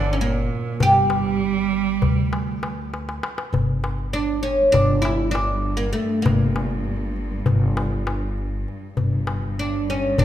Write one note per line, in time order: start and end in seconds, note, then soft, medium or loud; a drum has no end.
0.00 0.47 G1 loud
0.00 0.23 D3 medium
0.00 0.12 D4 medium
0.13 0.20 C#4 medium
0.21 0.82 A#2 medium
0.21 0.83 A#3 medium
0.21 darbuka ka soft
0.80 1.98 G1 medium
0.80 2.92 G3 loud
0.80 2.89 G4 medium
0.80 darbuka dum medium
1.10 darbuka tek medium
1.27 darbuka ka soft
1.57 darbuka ka soft
1.73 darbuka ka soft
2.02 3.19 D2 medium
2.02 darbuka dum medium
2.33 darbuka tek medium
2.63 darbuka tek medium
2.94 darbuka tek medium
3.09 darbuka ka medium
3.23 darbuka tek medium
3.38 darbuka ka medium
3.53 4.70 G1 medium
3.53 8.96 G2 medium
3.53 darbuka dum medium
3.84 darbuka tek medium
3.99 darbuka ka soft
4.13 4.42 D4 medium
4.43 4.72 C#4 medium
4.43 darbuka ka soft
4.72 5.91 G1 loud
4.72 5.01 D4 medium
4.72 darbuka dum medium
5.02 5.31 E4 medium
5.02 darbuka tek medium
5.31 5.80 D4 medium
5.31 darbuka tek medium
5.65 darbuka ka soft
5.77 5.92 A#3 medium
5.93 6.22 A3 medium
6.22 7.42 G1 medium
6.22 7.41 A#3 medium
6.22 darbuka dum loud
6.56 darbuka tek medium
6.71 darbuka ka soft
7.16 darbuka ka soft
7.46 8.63 G1 medium
7.46 darbuka dum medium
7.77 darbuka tek medium
8.07 darbuka tek medium
8.38 darbuka ka soft
8.68 darbuka ka soft
8.97 10.14 G1 medium
8.97 10.25 G2 medium
8.97 darbuka dum medium
9.27 darbuka tek medium
9.42 darbuka ka soft
9.59 9.87 D4 medium
9.88 10.19 C#4 medium
9.88 darbuka ka soft
10.18 10.25 G1 loud
10.18 10.25 D4 medium
10.18 darbuka dum medium